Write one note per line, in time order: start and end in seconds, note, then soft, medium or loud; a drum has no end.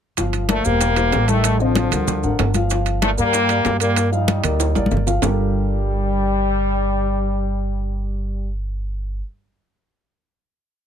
0.17 0.62 G1 medium
0.17 0.43 F3 medium
0.17 0.44 F4 medium
0.17 0.44 F5 medium
0.17 high bongo medium
0.17 high conga soft
0.17 high timbale medium
0.17 maracas medium
0.33 high bongo soft
0.33 high conga soft
0.33 high timbale medium
0.33 maracas soft
0.49 0.65 F3 medium
0.49 0.64 A3 loud
0.49 0.62 A#3 medium
0.49 0.62 A#4 medium
0.49 0.63 D5 medium
0.49 high bongo medium
0.49 high conga loud
0.49 high timbale medium
0.49 low timbale medium
0.49 maracas soft
0.65 1.10 E1 medium
0.65 1.29 G3 medium
0.65 0.91 A#3 medium
0.65 1.28 A#3 loud
0.65 0.91 G4 medium
0.65 0.91 C5 medium
0.65 high bongo soft
0.65 high conga soft
0.65 maracas medium
0.81 high bongo medium
0.81 high conga soft
0.81 high timbale medium
0.81 maracas medium
0.96 1.23 E3 medium
0.96 1.23 G4 medium
0.96 1.23 C5 medium
0.96 high bongo soft
0.96 high conga soft
0.96 high timbale medium
0.96 maracas soft
1.12 1.86 A1 medium
1.12 high bongo soft
1.12 low bongo medium
1.12 high conga soft
1.12 high timbale medium
1.12 low timbale medium
1.12 maracas soft
1.27 1.60 D#3 medium
1.27 1.54 G3 medium
1.27 1.60 A3 loud
1.27 1.54 G4 medium
1.27 1.55 A4 medium
1.27 high conga medium
1.27 high timbale medium
1.27 maracas medium
1.44 high bongo medium
1.44 high timbale medium
1.44 maracas medium
1.59 1.86 C3 medium
1.59 2.55 D3 medium
1.59 2.54 F3 medium
1.59 1.86 C4 medium
1.59 1.87 D#5 medium
1.59 high bongo soft
1.59 high conga soft
1.59 maracas soft
1.75 high bongo medium
1.75 high conga medium
1.75 high timbale medium
1.75 low timbale medium
1.75 maracas soft
1.91 2.21 D2 medium
1.91 2.18 G3 medium
1.91 2.18 A#4 medium
1.91 2.18 F#5 medium
1.91 high conga soft
1.91 low conga medium
1.91 high timbale medium
1.91 maracas medium
2.08 high bongo medium
2.08 high conga soft
2.08 low conga medium
2.08 maracas medium
2.23 2.38 G#1 medium
2.23 2.49 D3 medium
2.23 2.50 A#4 medium
2.23 2.49 F#5 medium
2.23 high bongo soft
2.23 high conga soft
2.23 maracas soft
2.39 3.13 G1 medium
2.39 high bongo soft
2.39 low bongo medium
2.39 high conga soft
2.39 high timbale medium
2.39 low timbale medium
2.39 maracas soft
2.54 2.68 F3 medium
2.54 2.68 F4 medium
2.54 2.68 F5 medium
2.54 high conga medium
2.54 high timbale medium
2.54 maracas medium
2.70 2.97 F3 medium
2.70 2.97 F4 medium
2.70 2.97 F5 medium
2.70 high bongo medium
2.70 high conga soft
2.70 high timbale medium
2.70 maracas medium
2.86 high bongo soft
2.86 high conga soft
2.86 high timbale medium
2.86 maracas soft
3.02 3.10 F3 medium
3.02 3.09 A3 loud
3.02 3.15 A#3 medium
3.02 3.15 A#4 medium
3.02 3.15 D5 medium
3.02 high bongo medium
3.02 high conga medium
3.02 high timbale medium
3.02 low timbale medium
3.02 maracas soft
3.17 3.62 G2 medium
3.17 3.78 G3 medium
3.17 3.44 A#3 medium
3.17 3.77 A#3 loud
3.17 3.44 A#4 medium
3.17 3.44 D5 medium
3.17 high bongo soft
3.17 high conga soft
3.17 maracas medium
3.33 high bongo medium
3.33 high conga soft
3.33 high timbale medium
3.33 maracas medium
3.49 3.75 A#3 medium
3.49 3.75 A#4 medium
3.49 3.76 D5 medium
3.49 high bongo soft
3.49 high conga soft
3.49 high timbale medium
3.49 maracas soft
3.65 4.38 G2 medium
3.65 high bongo soft
3.65 low bongo medium
3.65 high conga soft
3.65 high timbale medium
3.65 low timbale medium
3.65 maracas soft
3.79 4.10 G3 medium
3.79 4.09 A#3 loud
3.79 4.07 A#3 medium
3.79 4.07 A#4 medium
3.79 4.07 D5 medium
3.79 high timbale medium
3.79 maracas medium
3.96 high bongo medium
3.96 high conga soft
3.96 high timbale medium
3.96 maracas medium
4.11 4.38 F3 medium
4.11 5.02 G3 medium
4.11 5.03 D#4 medium
4.11 4.38 F4 medium
4.11 4.38 F5 medium
4.11 high bongo soft
4.11 high conga soft
4.11 maracas soft
4.28 high bongo medium
4.28 high conga loud
4.28 high timbale medium
4.28 low timbale medium
4.28 maracas soft
4.43 4.73 D2 medium
4.43 4.69 A#3 medium
4.43 4.70 A#4 medium
4.43 4.70 D5 medium
4.43 high conga soft
4.43 low conga medium
4.43 high timbale loud
4.43 maracas medium
4.60 high bongo medium
4.60 high conga soft
4.60 high timbale medium
4.60 maracas medium
4.75 4.90 A1 medium
4.75 5.01 A#3 medium
4.75 5.01 A#4 medium
4.75 5.02 D5 medium
4.75 high bongo soft
4.75 high conga medium
4.75 high timbale medium
4.75 maracas soft
4.86 high conga medium
4.91 5.19 G1 medium
4.91 high bongo soft
4.91 low bongo medium
4.91 maracas soft
4.97 low conga medium
5.06 5.19 F3 medium
5.06 5.20 F4 medium
5.06 5.20 F5 medium
5.06 low conga medium
5.06 low timbale medium
5.06 maracas medium
5.22 9.19 G1 medium
5.22 9.19 G3 medium
5.22 8.49 G3 medium
5.22 9.19 D4 medium
5.22 9.20 F4 medium
5.22 9.20 G4 medium
5.22 9.20 A4 medium
5.22 9.20 A#4 medium
5.22 low bongo loud
5.22 low conga medium
5.22 low timbale loud
5.22 maracas medium